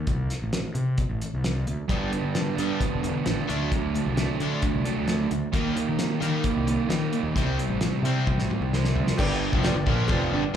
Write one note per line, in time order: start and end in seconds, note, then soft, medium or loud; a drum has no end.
0.07 0.27 C2 medium
0.07 kick loud
0.07 closed hi-hat medium
0.30 snare soft
0.30 closed hi-hat medium
0.42 0.62 A1 medium
0.53 snare loud
0.53 closed hi-hat medium
0.75 0.95 C3 medium
0.75 closed hi-hat medium
0.98 kick loud
0.98 closed hi-hat medium
1.10 1.20 A1 medium
1.22 closed hi-hat medium
1.34 1.63 C2 medium
1.44 snare medium
1.44 closed hi-hat medium
1.66 1.77 D2 medium
1.66 closed hi-hat medium
1.89 2.10 G1 medium
1.89 2.11 G2 medium
1.89 2.11 D3 medium
1.89 2.11 G3 medium
1.89 2.56 B3 medium
1.89 2.55 D4 medium
1.89 kick loud
1.89 closed hi-hat medium
2.13 2.33 G2 medium
2.13 2.33 D3 medium
2.13 closed hi-hat medium
2.24 2.54 G2 medium
2.35 2.56 G2 medium
2.35 2.56 D3 medium
2.35 snare loud
2.35 closed hi-hat medium
2.55 2.78 G2 medium
2.55 2.80 G2 medium
2.55 3.25 B3 medium
2.55 3.24 D4 medium
2.55 closed hi-hat medium
2.59 2.80 D3 medium
2.59 2.81 G3 medium
2.81 3.02 G2 medium
2.81 3.02 D3 medium
2.81 kick loud
2.81 closed hi-hat medium
2.93 3.12 E1 medium
3.03 3.24 G2 medium
3.03 3.24 D3 medium
3.03 closed hi-hat medium
3.25 3.37 A1 medium
3.25 3.47 G2 medium
3.25 3.46 D3 medium
3.25 3.47 G3 medium
3.25 3.48 B3 medium
3.25 3.48 D4 medium
3.25 snare medium
3.25 closed hi-hat medium
3.47 3.99 D2 medium
3.47 3.70 D3 medium
3.47 4.15 F#3 medium
3.47 3.70 A3 medium
3.47 3.71 D4 medium
3.47 closed hi-hat medium
3.72 3.93 D3 medium
3.72 3.93 A3 medium
3.72 kick loud
3.72 closed hi-hat medium
3.94 4.15 D3 medium
3.94 4.15 A3 medium
3.94 closed hi-hat medium
4.06 4.26 C2 medium
4.16 4.38 D3 medium
4.16 4.84 F#3 medium
4.16 4.39 A3 medium
4.16 4.83 D4 medium
4.16 snare medium
4.16 closed hi-hat medium
4.40 4.60 D3 medium
4.40 4.62 D3 medium
4.40 4.63 A3 medium
4.40 4.63 D4 medium
4.40 closed hi-hat medium
4.62 4.84 D3 medium
4.62 4.84 A3 medium
4.62 kick loud
4.62 closed hi-hat medium
4.74 4.84 C2 medium
4.84 5.07 D3 medium
4.84 5.30 F#3 medium
4.84 5.07 A3 medium
4.84 5.29 D4 medium
4.84 closed hi-hat medium
4.97 5.27 D2 medium
5.08 5.29 D3 medium
5.08 5.30 A3 medium
5.08 snare medium
5.08 closed hi-hat medium
5.31 5.41 D2 medium
5.31 5.52 D3 medium
5.31 5.52 A3 medium
5.31 closed hi-hat medium
5.53 5.74 D#2 medium
5.53 5.75 D#3 medium
5.53 6.22 G3 medium
5.53 5.75 A#3 medium
5.53 5.76 D#4 medium
5.53 kick loud
5.53 closed hi-hat medium
5.76 5.97 D#3 medium
5.76 5.97 A#3 medium
5.76 closed hi-hat medium
5.89 6.19 D#3 medium
5.99 6.19 D#3 medium
5.99 6.20 A#3 medium
5.99 snare medium
5.99 closed hi-hat medium
6.20 6.43 D#3 medium
6.20 6.42 D#3 medium
6.20 6.89 G3 medium
6.20 6.43 A#3 medium
6.20 6.44 D#4 medium
6.20 closed hi-hat medium
6.44 6.66 D#3 medium
6.44 6.66 A#3 medium
6.44 kick loud
6.44 closed hi-hat medium
6.56 6.77 C2 medium
6.67 6.88 D#3 medium
6.67 6.88 A#3 medium
6.67 closed hi-hat medium
6.89 7.10 D#3 medium
6.89 7.11 D#3 medium
6.89 7.36 G3 medium
6.89 7.11 A#3 medium
6.89 7.35 D#4 medium
6.89 snare loud
6.89 closed hi-hat medium
7.13 7.34 D#3 medium
7.13 7.34 A#3 medium
7.13 closed hi-hat medium
7.23 7.34 D#2 medium
7.36 7.56 C2 medium
7.36 7.58 C3 medium
7.36 7.58 G3 medium
7.36 7.58 C4 medium
7.36 8.02 E4 medium
7.36 kick loud
7.36 closed hi-hat medium
7.59 7.80 C3 medium
7.59 7.80 G3 medium
7.59 closed hi-hat medium
7.69 7.89 A1 medium
7.81 8.03 C3 medium
7.81 8.03 G3 medium
7.81 snare loud
7.81 closed hi-hat medium
8.02 8.23 C3 medium
8.02 8.27 C3 medium
8.02 8.26 G3 medium
8.02 8.71 E4 medium
8.02 closed hi-hat medium
8.06 8.27 C4 loud
8.27 8.48 C3 medium
8.27 8.48 G3 medium
8.27 kick loud
8.27 high tom medium
8.36 8.47 A1 medium
8.36 snare soft
8.50 8.71 C3 medium
8.50 8.71 G3 medium
8.50 mid tom medium
8.60 8.90 C2 medium
8.60 mid tom medium
8.73 8.94 C3 medium
8.73 8.94 G3 medium
8.73 9.18 C4 medium
8.73 9.18 E4 medium
8.73 snare medium
8.85 snare medium
8.95 9.05 D2 medium
8.95 9.16 C3 medium
8.95 9.17 G3 medium
8.95 floor tom medium
9.07 snare medium
9.17 9.51 G1 medium
9.17 9.52 G2 medium
9.17 9.53 D3 medium
9.17 9.53 G3 loud
9.17 9.54 G4 loud
9.17 9.55 B4 loud
9.17 9.56 D5 loud
9.17 kick loud
9.17 crash loud
9.17 cowbell loud
9.53 9.74 F1 medium
9.53 9.75 F2 medium
9.53 9.75 C3 loud
9.53 9.75 F3 loud
9.53 kick loud
9.63 10.00 G4 medium
9.63 10.01 B4 medium
9.63 10.02 D5 loud
9.63 snare loud
9.63 ride bell medium
9.63 cowbell medium
9.74 9.85 G1 medium
9.74 9.87 G2 medium
9.74 9.86 D3 medium
9.86 10.08 A#1 loud
9.86 10.08 A#2 medium
9.86 10.08 F3 medium
9.86 10.09 A#3 loud
9.86 kick loud
10.08 10.30 F1 medium
10.08 10.31 F2 medium
10.08 10.32 C3 medium
10.08 10.32 F3 loud
10.08 10.28 G4 medium
10.08 10.29 B4 medium
10.08 10.29 D5 loud
10.08 kick loud
10.08 ride bell medium
10.08 cowbell loud
10.31 10.43 G1 medium
10.31 10.43 G2 medium
10.31 10.43 D3 medium
10.31 10.50 G4 medium
10.31 10.50 B4 medium
10.31 10.51 D5 medium
10.44 muted overdriven electric guitar stroke medium
10.44 muted fingered electric bass stroke soft